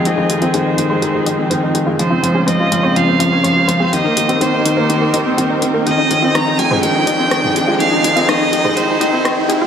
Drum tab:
HH |x-xxx-x-x-x-x-x-|x-x-x-x-x-x-x-x-|x-xxx-x-x-x-x-x-|x-x-x-x-x-x-x-x-|
SD |----------------|----------------|----------------|----r-------r---|
T2 |----------------|----------------|----------------|-------o-----o--|

HH |x-xxx-x-x-x-x-x-|
SD |----r-------r---|
T2 |-------o--------|